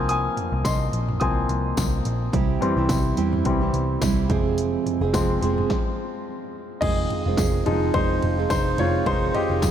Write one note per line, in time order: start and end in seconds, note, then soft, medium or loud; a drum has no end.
0.00 0.27 C2 medium
0.00 0.20 F3 soft
0.00 0.20 A#3 soft
0.00 0.21 C4 medium
0.00 0.11 G#5 medium
0.00 0.09 D#6 medium
0.09 0.62 G#5 medium
0.09 0.61 D#6 medium
0.09 closed hi-hat medium
0.37 closed hi-hat medium
0.37 floor tom medium
0.52 0.63 C2 loud
0.65 0.88 C2 medium
0.65 1.18 D#5 medium
0.65 1.23 C6 medium
0.65 kick loud
0.65 snare loud
0.65 closed hi-hat medium
0.65 tambourine medium
0.93 1.16 A#1 medium
0.93 closed hi-hat medium
1.08 floor tom medium
1.20 1.44 C2 loud
1.20 1.46 F3 soft
1.20 1.47 A#3 soft
1.20 1.47 C4 medium
1.20 1.74 G#5 medium
1.20 1.73 D#6 medium
1.20 kick loud
1.20 closed hi-hat medium
1.49 1.72 C2 medium
1.49 closed hi-hat medium
1.77 2.01 C2 medium
1.77 kick loud
1.77 snare loud
1.77 closed hi-hat medium
1.77 tambourine medium
2.05 2.29 A#1 medium
2.05 closed hi-hat medium
2.32 2.57 C2 loud
2.32 2.77 G3 medium
2.32 2.77 C4 medium
2.32 2.77 E4 medium
2.32 2.76 G4 medium
2.32 kick loud
2.32 closed hi-hat medium
2.61 3.43 E3 medium
2.61 3.44 G3 soft
2.61 3.44 C4 medium
2.61 closed hi-hat medium
2.61 floor tom medium
2.77 2.87 C2 loud
2.77 3.17 C4 soft
2.77 3.17 E4 medium
2.77 3.17 G4 medium
2.89 3.13 C2 loud
2.89 kick loud
2.89 snare loud
2.89 closed hi-hat medium
2.89 tambourine medium
3.16 3.41 E2 medium
3.16 3.61 G3 medium
3.16 3.62 C4 medium
3.16 3.61 E4 medium
3.16 3.60 G4 medium
3.16 closed hi-hat medium
3.33 floor tom medium
3.45 3.69 C2 medium
3.45 3.70 E3 soft
3.45 3.71 G3 soft
3.45 3.71 C4 medium
3.45 kick loud
3.45 closed hi-hat medium
3.61 4.01 C4 soft
3.61 4.01 E4 medium
3.61 4.02 G4 medium
3.73 3.96 C2 loud
3.73 closed hi-hat medium
4.01 4.31 C2 loud
4.01 4.30 G3 medium
4.01 4.30 C4 medium
4.01 4.30 E4 medium
4.01 4.31 G4 medium
4.01 kick loud
4.01 snare loud
4.01 closed hi-hat medium
4.01 tambourine medium
4.30 4.76 F1 medium
4.30 5.02 F2 medium
4.30 5.02 C3 medium
4.30 5.03 F3 medium
4.30 5.03 G#3 medium
4.30 5.02 C4 loud
4.30 5.01 G#4 medium
4.30 kick loud
4.30 closed hi-hat medium
4.58 closed hi-hat loud
4.86 closed hi-hat medium
4.86 floor tom medium
5.01 5.11 F1 loud
5.01 5.40 F3 soft
5.01 5.41 G#3 medium
5.01 5.42 C4 medium
5.01 5.42 G#4 medium
5.13 5.37 F1 loud
5.13 6.78 F3 medium
5.13 6.78 G#3 soft
5.13 6.78 C4 medium
5.13 kick loud
5.13 snare loud
5.13 closed hi-hat medium
5.13 tambourine medium
5.41 5.65 F1 medium
5.41 5.70 F3 medium
5.41 5.70 G#3 medium
5.41 5.71 C4 medium
5.41 5.71 G#4 medium
5.41 closed hi-hat medium
5.58 floor tom medium
5.70 kick loud
5.70 snare medium
6.81 7.05 F1 medium
6.81 7.26 D#3 medium
6.81 7.26 G#3 medium
6.81 7.25 C4 medium
6.81 7.24 F4 medium
6.81 7.90 G#4 medium
6.81 7.97 D#5 medium
6.81 kick loud
6.81 crash medium
6.81 ride medium
7.10 floor tom medium
7.10 ride soft
7.25 7.36 F1 loud
7.25 7.64 D#3 soft
7.25 7.65 G#3 medium
7.25 7.66 C4 medium
7.25 7.66 F4 medium
7.37 7.61 F1 loud
7.37 kick loud
7.37 snare loud
7.37 ride medium
7.37 tambourine medium
7.66 7.89 F1 loud
7.66 7.93 D#3 medium
7.66 9.71 F3 medium
7.66 9.05 G#3 medium
7.66 7.93 G#3 medium
7.66 7.94 C4 medium
7.66 7.94 D#4 medium
7.66 7.95 F4 medium
7.66 floor tom medium
7.66 ride medium
7.94 8.17 F1 loud
7.94 8.38 D#3 medium
7.94 8.38 G#3 medium
7.94 8.37 C4 medium
7.94 8.47 D#4 medium
7.94 8.36 F4 medium
7.94 8.49 C5 medium
7.94 kick loud
7.94 ride medium
8.22 8.45 F1 loud
8.22 floor tom medium
8.22 ride soft
8.38 8.77 D#3 medium
8.38 8.78 G#3 medium
8.38 8.78 C4 medium
8.38 8.78 F4 medium
8.50 8.73 F1 loud
8.50 8.77 D#4 medium
8.50 8.79 C5 medium
8.50 kick loud
8.50 snare loud
8.50 ride medium
8.50 tambourine medium
8.78 9.01 F1 loud
8.78 9.05 D#3 medium
8.78 9.06 G#3 medium
8.78 9.07 C4 medium
8.78 9.05 F4 medium
8.78 9.07 F4 medium
8.78 9.08 C#5 medium
8.78 floor tom medium
8.78 ride medium
9.06 9.29 F1 loud
9.06 9.71 D#3 medium
9.06 9.50 D#3 medium
9.06 9.71 G#3 soft
9.06 9.50 G#3 medium
9.06 9.50 C4 medium
9.06 9.33 D#4 medium
9.06 9.48 F4 medium
9.06 9.35 C5 medium
9.06 kick loud
9.06 ride medium
9.34 9.71 G4 medium
9.34 9.71 D#5 medium
9.34 floor tom medium
9.34 ride medium
9.50 9.60 F1 loud
9.50 9.71 D#3 soft
9.50 9.71 G#3 medium
9.50 9.71 C4 medium
9.50 9.71 F4 medium
9.62 9.71 F1 loud
9.62 kick loud
9.62 snare loud
9.62 ride medium
9.62 tambourine medium